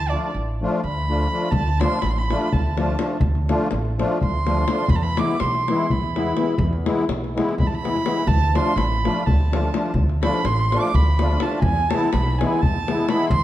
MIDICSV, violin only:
0, 0, Header, 1, 2, 480
1, 0, Start_track
1, 0, Tempo, 481155
1, 1516, Time_signature, 7, 3, 24, 8
1, 13403, End_track
2, 0, Start_track
2, 0, Title_t, "Violin"
2, 0, Program_c, 0, 40
2, 0, Note_on_c, 0, 81, 116
2, 96, Note_on_c, 0, 74, 90
2, 111, Note_off_c, 0, 81, 0
2, 326, Note_off_c, 0, 74, 0
2, 849, Note_on_c, 0, 83, 90
2, 1512, Note_on_c, 0, 81, 100
2, 1527, Note_off_c, 0, 83, 0
2, 1792, Note_on_c, 0, 84, 105
2, 1807, Note_off_c, 0, 81, 0
2, 2012, Note_on_c, 0, 83, 83
2, 2027, Note_off_c, 0, 84, 0
2, 2104, Note_on_c, 0, 84, 80
2, 2119, Note_off_c, 0, 83, 0
2, 2171, Note_on_c, 0, 83, 90
2, 2186, Note_off_c, 0, 84, 0
2, 2518, Note_on_c, 0, 81, 73
2, 2533, Note_off_c, 0, 83, 0
2, 3198, Note_off_c, 0, 81, 0
2, 4211, Note_on_c, 0, 84, 90
2, 4891, Note_on_c, 0, 83, 111
2, 4906, Note_off_c, 0, 84, 0
2, 4948, Note_on_c, 0, 81, 83
2, 4963, Note_off_c, 0, 83, 0
2, 5017, Note_on_c, 0, 83, 104
2, 5032, Note_off_c, 0, 81, 0
2, 5176, Note_on_c, 0, 86, 105
2, 5191, Note_off_c, 0, 83, 0
2, 5388, Note_on_c, 0, 84, 86
2, 5403, Note_off_c, 0, 86, 0
2, 5900, Note_on_c, 0, 83, 74
2, 5915, Note_off_c, 0, 84, 0
2, 6570, Note_off_c, 0, 83, 0
2, 7578, Note_on_c, 0, 83, 76
2, 7649, Note_on_c, 0, 81, 64
2, 7664, Note_off_c, 0, 83, 0
2, 7733, Note_on_c, 0, 83, 103
2, 7748, Note_off_c, 0, 81, 0
2, 8256, Note_on_c, 0, 81, 107
2, 8271, Note_off_c, 0, 83, 0
2, 8542, Note_on_c, 0, 84, 102
2, 8557, Note_off_c, 0, 81, 0
2, 8748, Note_on_c, 0, 83, 90
2, 8763, Note_off_c, 0, 84, 0
2, 9243, Note_on_c, 0, 81, 74
2, 9258, Note_off_c, 0, 83, 0
2, 9920, Note_off_c, 0, 81, 0
2, 10207, Note_on_c, 0, 83, 93
2, 10432, Note_on_c, 0, 84, 90
2, 10447, Note_off_c, 0, 83, 0
2, 10711, Note_on_c, 0, 86, 99
2, 10726, Note_off_c, 0, 84, 0
2, 10926, Note_on_c, 0, 83, 85
2, 10941, Note_off_c, 0, 86, 0
2, 11396, Note_on_c, 0, 81, 84
2, 11411, Note_off_c, 0, 83, 0
2, 11591, Note_off_c, 0, 81, 0
2, 11597, Note_on_c, 0, 80, 108
2, 11866, Note_on_c, 0, 81, 98
2, 11881, Note_off_c, 0, 80, 0
2, 12097, Note_on_c, 0, 83, 85
2, 12112, Note_off_c, 0, 81, 0
2, 12356, Note_on_c, 0, 80, 87
2, 12371, Note_off_c, 0, 83, 0
2, 12590, Note_on_c, 0, 81, 92
2, 12605, Note_off_c, 0, 80, 0
2, 13063, Note_on_c, 0, 83, 91
2, 13078, Note_off_c, 0, 81, 0
2, 13262, Note_off_c, 0, 83, 0
2, 13268, Note_on_c, 0, 84, 113
2, 13403, Note_off_c, 0, 84, 0
2, 13403, End_track
0, 0, End_of_file